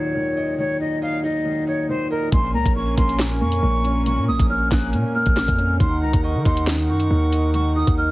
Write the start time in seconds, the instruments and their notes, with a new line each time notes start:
Already playing: harmonium D#2 A#2 F#3, felt piano D#3 D#4 D#5, flute C#5
0.15 felt piano D#3
0.37 felt piano D#5
0.58 felt piano D#3, flute C#5
0.80 felt piano D#4, flute D#5
1.02 felt piano D#5, flute F5
1.24 felt piano D#4, flute D#5
1.45 felt piano D#3
1.67 felt piano D#4, flute C#5
1.89 felt piano D#3, flute C5
2.11 flute A#4, felt piano D#5
2.32 808-style bass A#1, felt piano A#2, harmonium C#4 A#4 G#5, flute C6, kick, closed hi-hat
2.54 808-style bass C#2, felt piano A#3, flute A#5
2.66 808-style bass A#1, kick, closed hi-hat
2.76 felt piano C#4, flute C#6
2.98 808-style bass A#1, felt piano A#3, flute C6, kick, closed hi-hat
3.09 closed hi-hat
3.19 felt piano A#2, snare
3.41 808-style bass F2, felt piano A#3, flute C#6
3.52 closed hi-hat
3.63 808-style bass A#1, felt piano A#2
3.85 felt piano C#4, closed hi-hat
4.06 felt piano A#2, flute C#6, closed hi-hat
4.18 808-style bass A#2
4.28 808-style bass A#1, felt piano A#3, flute D#6
4.39 808-style bass A#1, kick, closed hi-hat
4.50 felt piano C#4, flute F6
4.71 808-style bass A#1, felt piano A#3, flute F#6, kick, snare, closed hi-hat
4.93 808-style bass A#2, felt piano A#2, closed hi-hat
5.15 felt piano A#3, flute F6
5.26 808-style bass A#1, kick, closed hi-hat
5.37 felt piano A#2, snare
5.48 808-style bass F2, kick, closed hi-hat
5.58 felt piano C#4, closed hi-hat
5.80 808-style bass D#2, felt piano D#3, harmonium D#4 A#4 F#5, flute C6, kick, closed hi-hat
6.02 808-style bass C#2, felt piano D#4, flute A#5
6.13 808-style bass D#2, kick, closed hi-hat
6.24 felt piano D#5, flute C#6
6.35 808-style bass D#3
6.45 808-style bass D#2, felt piano D#4, flute C6, kick, closed hi-hat
6.57 closed hi-hat
6.67 felt piano D#3, snare
6.89 808-style bass F#2, felt piano D#4, flute C#6
7.00 closed hi-hat
7.11 808-style bass D#2, felt piano D#3
7.32 felt piano D#5, closed hi-hat
7.54 felt piano D#3, flute C#6, closed hi-hat
7.76 felt piano D#4, flute D#6
7.87 808-style bass D#2, kick, closed hi-hat
7.98 felt piano D#5, flute F6